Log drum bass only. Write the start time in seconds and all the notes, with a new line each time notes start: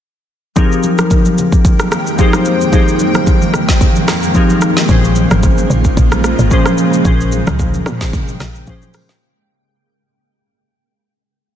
4.89 A#1
5.31 G#1
5.70 A#1
5.97 A#1
6.39 G#1
7.05 A#1
7.47 C#2
7.86 A#2
8.40 A#1